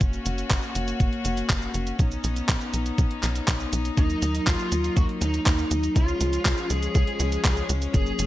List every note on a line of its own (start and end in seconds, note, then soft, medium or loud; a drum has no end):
0.00 0.19 F#1 medium
0.00 1.97 A#3 medium
0.00 3.93 C#4 medium
0.00 1.97 F#4 medium
0.00 kick loud
0.00 closed hi-hat medium
0.00 cabasa soft
0.13 closed hi-hat soft
0.13 cabasa soft
0.26 0.44 F#1 medium
0.26 closed hi-hat medium
0.26 cabasa medium
0.38 closed hi-hat soft
0.38 cabasa soft
0.50 0.60 F#1 loud
0.50 kick loud
0.50 clap loud
0.50 closed hi-hat medium
0.50 cabasa soft
0.63 closed hi-hat soft
0.63 cabasa soft
0.75 0.94 F#1 medium
0.75 closed hi-hat medium
0.75 cabasa medium
0.88 closed hi-hat medium
0.88 cabasa soft
1.00 1.09 F#1 medium
1.00 kick loud
1.00 closed hi-hat soft
1.00 cabasa soft
1.13 closed hi-hat soft
1.25 1.43 F#1 loud
1.25 closed hi-hat medium
1.25 cabasa medium
1.37 closed hi-hat soft
1.37 cabasa soft
1.50 1.68 F#1 loud
1.50 kick loud
1.50 clap loud
1.50 closed hi-hat medium
1.50 cabasa soft
1.62 closed hi-hat soft
1.62 cabasa soft
1.74 1.93 F#1 loud
1.74 closed hi-hat medium
1.74 cabasa medium
1.87 closed hi-hat soft
1.87 cabasa soft
1.99 2.17 B1 loud
1.99 3.96 B3 medium
1.99 5.92 D#4 medium
1.99 kick loud
1.99 closed hi-hat soft
1.99 cabasa soft
2.12 closed hi-hat soft
2.12 cabasa soft
2.24 2.42 B1 medium
2.24 closed hi-hat medium
2.24 cabasa medium
2.36 closed hi-hat soft
2.36 cabasa soft
2.49 2.58 B1 loud
2.49 kick loud
2.49 clap loud
2.49 closed hi-hat medium
2.49 cabasa soft
2.61 closed hi-hat soft
2.61 cabasa soft
2.74 2.92 B1 medium
2.74 closed hi-hat medium
2.74 cabasa medium
2.86 closed hi-hat soft
2.86 cabasa soft
2.98 3.07 B1 medium
2.98 kick loud
2.98 closed hi-hat soft
2.98 cabasa soft
3.11 closed hi-hat soft
3.23 3.41 B1 medium
3.23 clap medium
3.23 closed hi-hat medium
3.23 cabasa medium
3.36 closed hi-hat soft
3.36 cabasa soft
3.48 3.66 B1 loud
3.48 kick loud
3.48 clap loud
3.48 closed hi-hat soft
3.48 cabasa soft
3.60 closed hi-hat soft
3.60 cabasa soft
3.73 3.91 B1 loud
3.73 closed hi-hat medium
3.73 cabasa medium
3.85 closed hi-hat soft
3.85 cabasa soft
3.97 4.16 D#2 loud
3.97 5.94 F#3 medium
3.97 5.94 A#3 medium
3.97 4.44 D#4 medium
3.97 kick loud
3.97 closed hi-hat medium
3.97 cabasa soft
4.10 closed hi-hat soft
4.10 cabasa soft
4.22 4.41 D#2 medium
4.22 closed hi-hat medium
4.22 cabasa medium
4.35 closed hi-hat soft
4.35 cabasa soft
4.47 4.56 D#2 loud
4.47 4.96 F4 medium
4.47 kick loud
4.47 clap loud
4.47 closed hi-hat medium
4.47 cabasa soft
4.59 closed hi-hat soft
4.59 cabasa soft
4.72 4.90 D#2 medium
4.72 closed hi-hat medium
4.72 cabasa medium
4.84 closed hi-hat soft
4.84 cabasa soft
4.97 5.06 D#2 medium
4.97 5.03 F#4 loud
4.97 kick loud
4.97 closed hi-hat soft
4.97 cabasa soft
5.09 closed hi-hat soft
5.21 5.40 D#2 loud
5.21 5.96 D#4 medium
5.21 closed hi-hat medium
5.21 cabasa medium
5.34 closed hi-hat soft
5.34 cabasa soft
5.46 5.65 D#2 loud
5.46 kick loud
5.46 clap loud
5.46 closed hi-hat soft
5.46 cabasa soft
5.59 closed hi-hat soft
5.59 cabasa soft
5.71 5.89 D#2 medium
5.71 closed hi-hat medium
5.71 cabasa medium
5.83 closed hi-hat soft
5.83 cabasa soft
5.96 6.14 C#2 loud
5.96 7.92 F3 medium
5.96 7.92 G#3 medium
5.96 8.26 C#4 medium
5.96 6.73 F4 loud
5.96 kick loud
5.96 closed hi-hat medium
5.96 cabasa soft
6.08 closed hi-hat soft
6.08 cabasa soft
6.21 6.39 C#2 medium
6.21 closed hi-hat medium
6.21 cabasa medium
6.33 closed hi-hat medium
6.33 cabasa soft
6.45 6.55 C#2 loud
6.45 kick loud
6.45 clap loud
6.45 closed hi-hat medium
6.45 cabasa soft
6.58 closed hi-hat soft
6.58 cabasa soft
6.70 6.88 C#2 medium
6.70 6.94 G#4 loud
6.70 closed hi-hat medium
6.70 cabasa medium
6.83 closed hi-hat soft
6.83 cabasa soft
6.95 7.04 C#2 loud
6.95 7.66 G#4 loud
6.95 kick loud
6.95 closed hi-hat medium
6.95 cabasa soft
7.07 closed hi-hat soft
7.20 7.38 C#2 loud
7.20 closed hi-hat medium
7.20 cabasa medium
7.32 closed hi-hat soft
7.32 cabasa soft
7.45 7.63 C#2 loud
7.45 kick loud
7.45 clap loud
7.45 closed hi-hat soft
7.45 cabasa soft
7.57 closed hi-hat soft
7.57 cabasa soft
7.69 7.88 C#2 loud
7.69 closed hi-hat medium
7.69 cabasa medium
7.82 closed hi-hat soft
7.82 cabasa soft
7.94 8.12 F#1 loud
7.94 8.26 F#3 medium
7.94 8.26 A#3 medium
7.94 8.26 G#4 loud
7.94 kick loud
7.94 closed hi-hat medium
7.94 cabasa soft
8.07 closed hi-hat soft
8.07 cabasa soft
8.19 8.26 F#1 medium
8.19 closed hi-hat loud
8.19 cabasa medium